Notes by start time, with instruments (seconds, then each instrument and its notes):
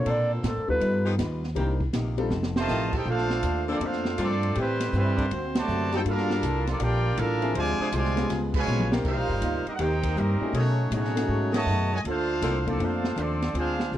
Already playing: clarinet C#5
0.06 upright bass A#2, saxophone section D3 A#3 C4 A4, hollow-body jazz guitar A#3 D4 A4 C5, clarinet D5, ride
0.34 clarinet F4
0.43 upright bass A2, hollow-body jazz guitar A#3 D4 A4 C5, snare, hi-hat pedal, ride
0.47 clarinet A4
0.56 upright bass F2
0.68 upright bass D2, grand piano G3 B3 D#4 F4 A4, clarinet B4
0.80 upright bass G2, hollow-body jazz guitar G3 D#4 F4 B4, ride
1.04 saxophone section F3 B3 D#4 G4
1.18 upright bass D#2, hollow-body jazz guitar G3 D#4 F4 B4, snare, hi-hat pedal, ride
1.43 snare
1.55 upright bass C2, hollow-body jazz guitar C3 A#3 D#4 G4, saxophone section D#3 A#3 C4 G4, grand piano G3 C4 D4 D#4 A#4, ride
1.80 kick
1.93 upright bass A#1, hollow-body jazz guitar C3 A#3 D#4 G4, snare, hi-hat pedal, ride
2.18 grand piano G3 C4 D#4 F4 A4, ride
2.30 upright bass F1, hollow-body jazz guitar F3 C4 D#4 A4, snare
2.43 snare
2.56 trombone section C3 D#3 A3, trumpet section F4 C5 D#5 A5, snare
2.68 upright bass A1, saxophone section D#3 A3 C4 F4, hollow-body jazz guitar F3 C4 D#4 A4, snare, hi-hat pedal
2.93 trumpet section D#4 A4 C5 G5, trombone section G4, kick, crash
3.05 upright bass A#1, trombone section A3 D4 F4, hollow-body jazz guitar A#3 D4 A4 C5, trumpet section D4 A4 C5 F5
3.18 snare
3.30 snare
3.43 upright bass D#2, hollow-body jazz guitar A#3 D4 A4 C5, hi-hat pedal, ride
3.68 saxophone section D3 A#3 C4 A4, trombone section F3 A3 D4, grand piano A#3 C4 D4 F4 A4, trumpet section C4 F4 A4 D5
3.80 upright bass F2, trombone section A3 D4 F4, hollow-body jazz guitar A#3 D4 A4 C5, ride
3.84 trumpet section D4 A4 C5 F5
3.93 snare
4.05 snare
4.17 upright bass G2, saxophone section D3 A#3 C4 F4, trombone section F3 A3 D4, hollow-body jazz guitar A#3 D4 A4 C5, trumpet section C4 F4 D5, hi-hat pedal, ride
4.21 trumpet section A4
4.43 ride
4.55 upright bass A2, saxophone section C3 A3 C4 G4, trombone section E3 G3 C4, trumpet section G3 E4 C5, hollow-body jazz guitar A3 C4 G4 B4, ride
4.59 trumpet section B4
4.80 snare, ride
4.93 upright bass G2, trombone section E3 G3 C4, trumpet section G3 E4 B4 C5, hollow-body jazz guitar A3 C4 G4 B4, hi-hat pedal
5.17 saxophone section D3 A#3 C4 D4, kick, ride
5.31 upright bass D2, hollow-body jazz guitar D3 A#3 C4 F#4, ride
5.55 trombone section C3 F#3 A3, trumpet section F#4 C5 D5 A5, snare, ride
5.68 upright bass F#2, hollow-body jazz guitar D3 A#3 C4 F#4, hi-hat pedal
5.92 grand piano G3 A#3 D4 F4 F#4, trumpet section D#4 A4 C5 G5, trombone section G4, snare, ride
6.04 upright bass G2, saxophone section G3 A#3 D4, hollow-body jazz guitar G3 A#3 F4 A4, trombone section A#3 D4 F4, trumpet section D4 A4 A#4 F5, ride
6.18 snare
6.30 snare
6.42 upright bass C2, hollow-body jazz guitar G3 A#3 F4 A4, hi-hat pedal, ride
6.67 trombone section F3 A#3 D4, trumpet section A#3 F4 A4 D5, snare, ride
6.80 upright bass A#1, hollow-body jazz guitar G3 A#3 F4 A4, trombone section A#3 D4 G4, trumpet section F4 A#4 D5 G5, ride
7.17 upright bass A1, hollow-body jazz guitar G3 A#3 F4 A4, trombone section A#3 D4 F4, trumpet section D4 A4 A#4 F5, hi-hat pedal, ride
7.41 grand piano F3 C4 D4 G#4 E5, ride
7.55 upright bass D2, trombone section C3 F3 G#3, hollow-body jazz guitar D3 C4 F4 G#4, trumpet section F4 C5 D5 G#5, ride
7.79 saxophone section F3 C4 D4 G#4, muted upright bass stroke
7.92 upright bass C2, trombone section C3 F3 G#3, hollow-body jazz guitar D3 C4 F4 G#4, trumpet section F4 C5 D5 G#5, hi-hat pedal, ride
8.05 snare
8.16 grand piano G#3 B3 C#4 F4 G4, snare, ride
8.29 upright bass C#2, hollow-body jazz guitar C#3 G3 B3 F4, snare, ride
8.54 trombone section B2 F3 G#3, trumpet section F4 B4 C#5 G#5, kick, crash
8.66 upright bass A#1, hollow-body jazz guitar C#3 G3 B3 F4, hi-hat pedal
8.79 mid tom
8.91 saxophone section D#3 A#3 C4 G4, grand piano A#3 C4 D4 D#4 A#4, snare
9.04 upright bass C2, hollow-body jazz guitar C3 A#3 D#4 G4, trombone section G3 A#3 F4, trumpet section D#4 A#4 C5 F5, kick, crash
9.17 upright bass A#1
9.29 upright bass G1, kick
9.41 upright bass D2, hollow-body jazz guitar C3 A#3 D#4 G4, hi-hat pedal, ride
9.66 trombone section G3 A#3 D#4, trumpet section C4 G4 A#4 D#5, muted upright bass stroke, ride
9.74 trumpet section F#5
9.79 upright bass D#2, hollow-body jazz guitar C3 A#3 D#4 G4, saxophone section D#3 A#3 C4 G4, trombone section A#3 D#4 G4, trumpet section D#4 A#4 C5 G5, ride
10.03 kick, ride
10.16 upright bass G2, hollow-body jazz guitar C3 A#3 D#4 G4, trombone section G3 A#3 D#4, trumpet section C4 G4 A#4 D#5, hi-hat pedal
10.41 grand piano A3 C#4 D#4 F#4 G#4, muted upright bass stroke
10.53 upright bass B2, hollow-body jazz guitar B2 A3 D#4 G#4, saxophone section D#3 A3 C#4 G#4, trombone section F#3 A3 C#4, trumpet section A3 D#4 F#4 C#5, ride
10.91 upright bass A2, hollow-body jazz guitar B2 A3 D#4 G#4, trombone section F#3 A3 C#4, trumpet section A3 D#4 F#4 C#5, hi-hat pedal, ride
11.05 snare
11.15 grand piano C#4 D#4 F#4 G#4 A4, snare, ride
11.28 upright bass G#2, hollow-body jazz guitar B2 A3 D#4 G#4
11.52 saxophone section D#3 A3 C#4 G#4, trombone section D#3 F#3 A3, trumpet section F#4 C#5 D#5 A5, snare, ride
11.66 upright bass F#2, hollow-body jazz guitar B2 A3 D#4 G#4, hi-hat pedal
11.92 trombone section A2 D#3 G#3, trumpet section F#4 C#5 D#5 G#5
12.04 upright bass D2, trombone section A3 D4 F4, hollow-body jazz guitar A#3 D4 A4 C5, trumpet section D4 A4 C5 F5, ride
12.41 upright bass C2, saxophone section D3 A#3 C4 A4, hollow-body jazz guitar A#3 D4 A4 C5, snare, hi-hat pedal, ride
12.66 trombone section F3 A3 D4, grand piano A#3 C4 D4 F4 A4, trumpet section C4 F4 A4 D5, kick, ride
12.79 upright bass F2, trombone section A3 D4 F4, hollow-body jazz guitar A#3 D4 A4 C5, trumpet section D4 A4 C5 F5, ride
13.04 snare
13.16 upright bass D#2, trombone section F3 A3 D4, hollow-body jazz guitar A#3 D4 A4 C5, trumpet section A4, hi-hat pedal, ride
13.20 trumpet section C4 F4 D5
13.42 snare, ride
13.54 upright bass D2, hollow-body jazz guitar D3 C4 F4 G#4, trombone section G#3 C4 F4, trumpet section D4 G#4 C5 F5, ride
13.80 snare
13.92 upright bass C2, hollow-body jazz guitar D3 C4 F4 G#4, trombone section G#3 C4 F4, trumpet section D4 G#4 C5 F5, hi-hat pedal